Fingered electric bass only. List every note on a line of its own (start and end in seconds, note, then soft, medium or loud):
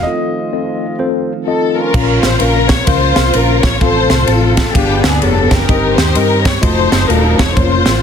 1.94 2.19 A#1 loud
2.23 2.38 A1 medium
2.41 2.81 A#1 medium
2.87 3.12 C#2 loud
3.17 3.32 C2 medium
3.35 3.59 A#1 medium
3.63 3.79 A1 loud
3.81 4.06 A1 loud
4.10 4.25 C2 loud
4.28 4.68 A1 medium
4.75 5.00 G1 loud
5.04 5.19 D2 medium
5.22 5.47 F1 medium
5.51 5.66 F#1 loud
5.69 5.94 G1 loud
5.97 6.13 D#2 medium
6.16 6.56 G2 medium
6.63 6.88 F1 loud
6.92 7.07 F#1 medium
7.09 7.34 D#1 medium
7.39 7.54 E1 loud
7.57 7.82 F1 medium
7.86 8.01 A1 medium